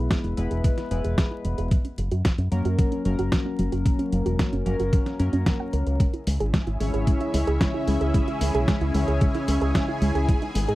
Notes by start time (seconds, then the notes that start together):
Already playing: G#3 B3 E4 B4
0.11 G#3, kick, snare, closed hi-hat
0.24 E1 E4, closed hi-hat
0.37 E1 G#3 B3 E4 B4, closed hi-hat
0.51 E1 G#4, closed hi-hat
0.64 G#3, kick, closed hi-hat
0.78 E4, snare, closed hi-hat
0.91 E1 G#3 B3 E4 B4, closed hi-hat
1.04 E1 G#4, closed hi-hat
1.18 G#3, kick, snare, closed hi-hat
1.31 E4
1.45 E1 G#3, closed hi-hat
1.58 E1 G#4, closed hi-hat
1.71 F#3, kick, closed hi-hat
1.85 C#4, closed hi-hat
1.98 F#1 F#3, closed hi-hat
2.11 F#2 F#4, closed hi-hat
2.25 F#3, kick, snare, closed hi-hat
2.38 F#2 C#4, closed hi-hat
2.52 F#2 F#3 A#3 C#4 A#4, closed hi-hat
2.65 F#2 F#4, closed hi-hat
2.79 F#3, kick, closed hi-hat
2.92 C#4, closed hi-hat
3.05 F#1 F#3 A#3 C#4 A#4, closed hi-hat
3.19 F#1 F#4, closed hi-hat
3.32 F#3, kick, snare, closed hi-hat
3.46 C#4
3.59 F#1 F#3, closed hi-hat
3.72 F#1 F#4, closed hi-hat
3.86 F#3, kick, closed hi-hat
3.99 C#4, closed hi-hat
4.12 F#1 F#3, closed hi-hat
4.26 E1 F#4, closed hi-hat
4.39 F#3, kick, snare, closed hi-hat
4.53 F#1 C#4, closed hi-hat
4.66 F#1 F#3 A#3 C#4 A#4, closed hi-hat
4.79 F#1 F#4, closed hi-hat
4.93 F#3, kick, closed hi-hat
5.06 C#4, snare, closed hi-hat
5.19 F#2 F#3 A#3 C#4 A#4, closed hi-hat
5.33 F#2 C#4, closed hi-hat
5.46 F#3, kick, snare, closed hi-hat
5.60 F#5
5.73 C#2 A#4, closed hi-hat
5.86 C#2 A#4, closed hi-hat
6.00 G#3 C#4 E4 G#4 E5 G#5, kick, closed hi-hat
6.13 E4, closed hi-hat
6.27 C#2 G#3, open hi-hat
6.40 G#1 G#4, closed hi-hat
6.54 G#3, kick, snare, closed hi-hat
6.67 G#1 E4, closed hi-hat
6.80 G#1 C#3 G#3 C#4 E4 C#5, open hi-hat
6.94 G#1 G#4, closed hi-hat
7.07 G#3, kick, closed hi-hat
7.21 E4, closed hi-hat
7.34 C#2 C#3 G#3 C#4 E4 C#5, open hi-hat
7.47 C#2 G#4, closed hi-hat
7.61 G#3, kick, snare, closed hi-hat
7.74 E4
7.87 C#2 G#3, open hi-hat
8.01 C#2 G#4, closed hi-hat
8.14 G#3, kick, closed hi-hat
8.28 E4, closed hi-hat
8.41 C#2 G#3, open hi-hat
8.54 B1 G#4
8.68 G#3, kick, snare, closed hi-hat
8.81 C#2 E4, closed hi-hat
8.94 C#2 C#3 G#3 C#4 E4 C#5, open hi-hat
9.08 C#2 G#4, closed hi-hat
9.21 G#3, kick, closed hi-hat
9.35 E4, snare, closed hi-hat
9.48 C#2 C#3 G#3 C#4 E4 C#5, open hi-hat
9.61 C#2 G#4, closed hi-hat
9.75 G#3, kick, snare, closed hi-hat
9.88 E4
10.01 C#2 G#3, open hi-hat
10.15 C#2 G#4, closed hi-hat
10.28 G#3 B3 D#4 D#5, kick, closed hi-hat
10.42 D#4, closed hi-hat
10.55 G#1 G#3, open hi-hat
10.68 G#2 G#4, closed hi-hat